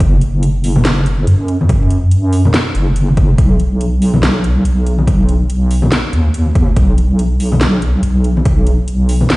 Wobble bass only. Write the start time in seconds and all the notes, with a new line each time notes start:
0.00 F#1
1.27 F#2
2.75 F#1
3.38 B1
4.65 B1
6.13 D#2
6.76 B1
8.03 B1